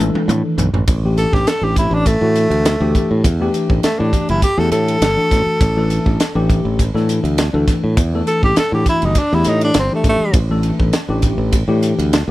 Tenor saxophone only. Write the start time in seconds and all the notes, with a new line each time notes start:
1.18 A4
1.34 G4
1.48 A4
1.64 G4
1.78 E4
1.94 D4
2.07 A3
3.84 A3
3.99 D4
4.30 E4
4.43 G4
4.59 A4
4.72 A4
8.28 A4
8.44 G4
8.59 A4
8.74 G4
8.89 E4
9.05 D#4
9.19 D4
9.35 E4
9.49 D#4
9.64 D4
9.79 C4
9.95 A3
10.09 A3